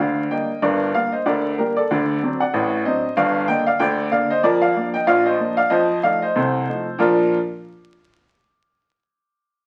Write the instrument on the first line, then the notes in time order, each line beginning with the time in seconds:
upright piano
Already playing: D5 F5
0.00 D2 D3
0.31 G3 A#3 D4 D#5 G5
0.62 G1 G2 A#4 D5
0.94 G3 A#3 D4 D5 F5
1.12 C5 D#5
1.26 D2 D3 A#4 D5
1.58 G3 A#3 D4 G4 A#4
1.77 A4 D5
1.91 D2 D3
2.23 F#3 C4 D4
2.40 D5 F#5
2.54 A1 A2
2.85 F#3 C4 D4 C5 D#5
3.17 G1 G2 D5 F5
3.48 D3 A#3 D4 D#5 G5
3.67 D5 F5
3.79 D2 D3 D5 G5
4.12 D3 A#3 D4 D5 F5
4.30 C5 D#5
4.43 F2 F3 A#4 D5
4.62 D5 F5
4.76 F3 A#3 D4
4.94 D#5 G5
5.07 A#1 A#2 D5 F5
5.26 C5 D#5
5.39 F3 A#3 D4
5.57 D5 F5
5.70 F2 F3 C5 D#5
6.03 F3 A3 D#4 D5 F5
6.22 C5 D#5
6.36 C2 C3 A4 C5
6.68 F3 A3 D#4
6.98 A#2 F3 D4 F4 A#4 D5